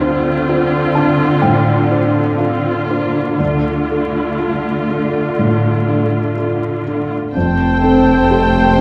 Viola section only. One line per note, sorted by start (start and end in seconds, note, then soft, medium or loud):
0.00 2.35 C4 soft
0.00 2.35 F4 medium
2.39 2.88 C4 soft
2.39 3.37 F4 soft
2.89 3.38 A#3 soft
3.39 7.15 A3 soft
3.39 7.11 F4 soft
7.34 8.81 A3 soft